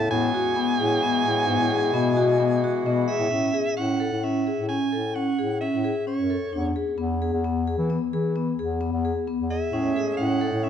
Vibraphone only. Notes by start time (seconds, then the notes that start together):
0.11 B3
0.34 F#4
0.56 B3
0.80 G#4
1.03 B3
1.25 G#4
1.47 B3
1.70 G#4
1.94 B3
2.17 F#4
2.40 B3
2.64 F#4
2.86 B3
3.09 G#4
3.31 C#4
3.54 G#4
3.77 C#4
4.00 A4
4.24 C#4
4.47 G#4
4.69 C#4
4.92 A4
5.16 C#4
5.39 G#4
5.62 C#4
5.84 G#4
6.07 C#4
6.30 A4
6.53 D4
6.76 G#4
6.98 B3
7.22 G#4
7.44 B3
7.67 G#4
7.90 B3
8.13 G#4
8.36 B3
8.59 G#4
8.81 B3
9.05 G#4
9.28 B3
9.50 G#4
9.73 C#4
9.96 G#4
10.18 C#4
10.41 A4
10.64 C#4